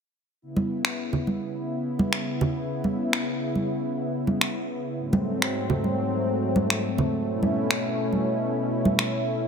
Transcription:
0.42 4.95 C#3 medium
0.42 4.95 B3 medium
0.42 4.95 E4 medium
0.56 high conga medium
0.85 finger snap medium
1.13 low conga medium
1.27 high conga medium
1.99 high conga medium
2.13 finger snap medium
2.41 low conga medium
2.84 high conga medium
3.13 finger snap medium
3.55 high conga medium
4.27 high conga medium
4.41 finger snap medium
4.99 7.25 G#2 medium
4.99 7.25 F#3 medium
4.99 9.48 A3 medium
4.99 7.25 C4 medium
5.13 high conga medium
5.42 finger snap medium
5.70 low conga medium
5.84 high conga medium
6.56 high conga medium
6.70 finger snap medium
6.98 low conga medium
7.27 9.48 B2 medium
7.27 9.48 C#4 medium
7.27 9.48 E4 medium
7.43 high conga medium
7.71 finger snap medium
8.13 high conga medium
8.85 high conga medium
8.99 finger snap medium

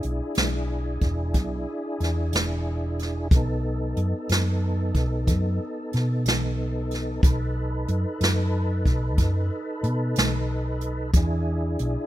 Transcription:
0.00 3.28 D4 medium
0.00 3.28 E4 medium
0.00 3.28 G#4 medium
0.00 closed hi-hat medium
0.04 0.19 B1 medium
0.35 0.99 B1 medium
0.35 snare medium
0.35 closed hi-hat medium
1.01 1.34 E1 medium
1.01 kick medium
1.01 closed hi-hat soft
1.34 1.65 B1 medium
1.34 kick medium
1.34 closed hi-hat medium
2.00 2.31 E2 medium
2.00 snare soft
2.00 closed hi-hat soft
2.33 3.27 E1 medium
2.33 snare loud
2.33 closed hi-hat medium
2.99 snare soft
2.99 closed hi-hat soft
3.31 3.93 B1 medium
3.31 7.21 A4 medium
3.31 kick loud
3.31 closed hi-hat medium
3.35 7.22 B3 medium
3.35 7.22 D#4 medium
3.97 4.12 F#2 medium
3.97 closed hi-hat medium
4.29 4.91 F#2 medium
4.29 snare medium
4.29 closed hi-hat medium
4.94 5.29 B1 medium
4.94 kick medium
4.94 closed hi-hat medium
5.27 5.58 F#2 medium
5.27 kick medium
5.27 closed hi-hat medium
5.93 6.24 B2 medium
5.93 snare soft
5.93 closed hi-hat medium
6.26 7.20 B1 medium
6.26 snare loud
6.26 closed hi-hat medium
6.91 snare soft
6.91 closed hi-hat soft
7.23 7.85 B1 medium
7.23 11.11 D#4 medium
7.23 11.11 A4 medium
7.23 11.11 B4 medium
7.23 kick loud
7.23 closed hi-hat medium
7.88 8.04 F#2 medium
7.88 closed hi-hat medium
8.21 8.82 F#2 medium
8.21 snare medium
8.21 closed hi-hat medium
8.86 9.19 B1 medium
8.86 kick medium
8.86 closed hi-hat soft
9.18 9.49 F#2 medium
9.18 kick medium
9.18 closed hi-hat medium
9.83 10.14 B2 medium
9.83 closed hi-hat medium
10.16 11.11 B1 medium
10.16 snare loud
10.16 closed hi-hat medium
10.81 closed hi-hat medium
11.13 11.75 E2 medium
11.13 12.06 D4 medium
11.13 12.06 G#4 medium
11.13 kick loud
11.13 closed hi-hat medium
11.17 12.06 E4 medium
11.79 11.95 B1 medium
11.79 closed hi-hat medium

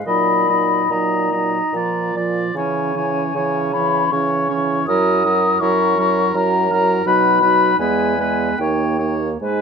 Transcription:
0.06 0.81 A#2 soft
0.06 0.48 F#3 soft
0.06 0.48 D#4 soft
0.06 0.48 D#5 soft
0.06 0.92 B5 soft
0.49 0.90 F#3 soft
0.49 0.90 D#4 soft
0.49 0.90 D#5 soft
0.90 1.56 A#2 soft
0.90 1.32 F#3 soft
0.90 1.32 D#4 soft
0.90 1.31 D#5 soft
0.90 2.15 A#5 soft
1.32 1.62 F#3 soft
1.32 1.74 D#4 soft
1.32 1.73 D#5 soft
1.73 2.46 A#2 soft
1.73 2.14 F3 soft
1.73 2.16 F4 soft
1.73 2.16 D5 soft
2.15 2.54 F3 soft
2.15 2.56 F4 soft
2.15 2.56 D5 soft
2.55 3.25 C#3 soft
2.55 2.94 E3 soft
2.55 2.94 C#4 soft
2.55 2.95 C#5 soft
2.55 3.74 G#5 soft
2.95 3.34 E3 soft
2.95 3.34 C#4 soft
2.95 3.35 C#5 soft
3.35 4.03 C#3 soft
3.35 3.73 E3 soft
3.35 3.73 C#4 soft
3.35 3.73 C#5 soft
3.73 4.12 E3 soft
3.73 4.12 C#4 soft
3.73 4.12 C#5 soft
3.73 4.13 B5 soft
4.11 4.80 C#3 soft
4.11 4.50 E3 soft
4.11 4.49 C#4 soft
4.11 4.49 C#5 soft
4.11 4.86 C#6 soft
4.49 4.88 E3 soft
4.49 4.87 C#4 soft
4.49 4.87 C#5 soft
4.86 5.53 F#2 soft
4.86 5.25 F#3 soft
4.86 5.24 E4 soft
4.86 5.24 A#4 soft
4.86 5.61 D#6 medium
5.25 5.61 F#3 soft
5.25 5.61 E4 soft
5.25 5.60 A#4 soft
5.60 6.26 F#2 soft
5.60 5.97 F#3 soft
5.60 5.97 E4 soft
5.60 5.97 A#4 soft
5.60 6.36 C#6 medium
5.98 6.34 F#3 soft
5.98 6.34 E4 soft
5.98 6.35 A#4 soft
6.34 6.98 F#2 soft
6.34 6.70 F#3 soft
6.34 6.70 E4 soft
6.34 6.71 A#4 soft
6.34 7.05 A#5 medium
6.71 7.05 F#3 soft
6.71 7.05 E4 soft
6.71 7.06 A#4 soft
7.06 7.71 B2 medium
7.06 7.41 F#3 soft
7.06 7.41 D#4 soft
7.06 7.40 B4 soft
7.06 7.78 B5 medium
7.41 7.79 F#3 soft
7.41 7.80 D#4 soft
7.41 7.79 B4 soft
7.78 8.50 E2 soft
7.78 8.18 G#3 soft
7.78 8.18 B3 soft
7.78 8.18 B4 soft
7.78 8.59 G#5 medium
8.19 8.57 G#3 soft
8.19 8.58 B3 soft
8.19 8.59 B4 soft
8.58 9.32 D#2 soft
8.58 8.99 A#3 soft
8.58 8.99 D#4 soft
8.58 8.99 C#5 soft
8.58 9.12 G5 soft
8.99 9.41 A#3 soft
8.99 9.29 D#4 soft
8.99 9.30 C#5 soft
9.41 9.61 G#2 soft
9.41 9.61 G#3 soft
9.41 9.61 D#4 soft
9.41 9.61 B4 soft
9.41 9.61 G#5 soft

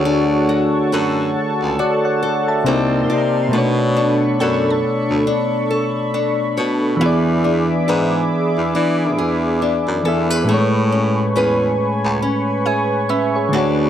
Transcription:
0.00 0.79 D2 loud
0.00 2.60 D3 medium
0.00 2.62 A3 medium
0.00 2.63 F#4 medium
0.00 2.67 G#4 medium
0.00 2.63 A4 medium
0.00 1.78 C#5 medium
0.00 2.63 F#5 medium
0.00 3.49 A5 loud
0.00 2.63 C#6 medium
0.05 2.66 D4 medium
0.49 0.91 F#4 medium
0.92 1.31 F#2 loud
0.92 1.78 F#4 medium
0.92 2.21 A4 medium
0.92 2.77 C#5 medium
1.61 1.78 C#2 medium
1.79 2.76 F#4 medium
1.79 2.04 A4 medium
1.79 2.03 D5 medium
2.05 2.46 C#5 medium
2.05 2.46 F#5 medium
2.23 2.76 A4 medium
2.48 2.90 E5 medium
2.48 2.89 A5 medium
2.64 3.12 C2 medium
2.64 3.52 C3 medium
2.64 3.53 A#3 medium
2.64 3.53 C4 medium
2.64 2.74 D4 medium
2.64 3.52 D#4 medium
2.64 3.52 A#4 medium
2.64 3.52 C6 medium
2.69 3.54 D5 medium
2.74 3.57 D#4 medium
3.10 3.49 C3 loud
3.10 4.41 D5 medium
3.49 6.95 B2 medium
3.49 6.96 A3 medium
3.53 4.31 B2 loud
3.53 7.03 B3 medium
3.53 6.98 D4 medium
3.53 6.98 A4 medium
3.53 10.45 B5 medium
3.53 6.98 C#6 medium
3.58 6.99 C#5 medium
3.97 4.40 D4 medium
4.40 4.79 F#2 loud
4.40 5.27 D4 medium
4.40 5.69 A4 medium
4.40 6.56 C#5 medium
4.40 6.36 F#5 medium
4.70 6.56 A5 medium
5.09 5.25 D2 medium
5.27 6.14 D4 medium
5.71 7.11 A4 medium
6.14 7.44 D4 medium
6.57 7.03 B2 loud
6.57 7.11 C#5 medium
6.97 9.99 E3 medium
6.97 10.01 B3 medium
6.97 10.45 D6 medium
7.01 7.79 E2 loud
7.01 10.51 E3 medium
7.01 10.45 G#4 medium
7.01 10.02 G#4 medium
7.01 10.45 E5 medium
7.01 8.96 E5 medium
7.06 10.04 D5 medium
7.44 7.87 D4 medium
7.88 8.27 G#2 loud
7.88 8.74 D4 medium
7.88 9.18 G#4 medium
7.88 10.05 B4 medium
8.57 8.73 E2 medium
8.75 9.20 E3 loud
8.75 9.61 D4 medium
9.18 9.80 E2 loud
9.18 11.36 G#4 medium
9.62 10.59 D4 medium
9.88 10.07 F#2 medium
10.04 10.51 E2 loud
10.04 10.48 E3 medium
10.04 10.49 B3 medium
10.04 10.49 G#4 medium
10.04 10.30 A4 medium
10.04 10.88 G#5 medium
10.08 10.50 E5 medium
10.30 10.59 B4 medium
10.36 11.16 B5 medium
10.45 13.47 A2 medium
10.45 13.49 G#3 medium
10.45 13.53 A3 medium
10.49 11.27 A2 loud
10.49 13.90 B4 medium
10.49 12.63 B4 medium
10.49 13.50 G#5 medium
10.49 13.50 B5 medium
10.49 13.90 C#6 medium
10.54 12.65 C#5 medium
10.92 11.35 C#4 medium
11.36 11.75 E2 medium
11.36 12.22 C#4 medium
11.36 12.65 G#4 medium
11.36 13.64 B4 medium
12.05 12.21 C#2 loud
12.22 13.09 C#4 medium
12.66 13.63 G#4 medium
12.66 13.08 C#5 medium
12.66 13.90 E5 medium
12.66 13.08 G#5 medium
13.09 13.90 C#4 medium
13.09 13.34 B4 medium
13.09 13.34 E5 medium
13.09 13.90 B5 medium
13.35 13.77 G#4 medium
13.35 13.57 C#5 medium
13.49 13.90 D3 medium
13.49 13.90 A3 medium
13.53 13.90 D2 loud
13.53 13.90 D4 medium
13.53 13.90 F#4 medium
13.53 13.90 F#5 medium
13.53 13.90 A5 medium
13.58 13.90 C#5 medium

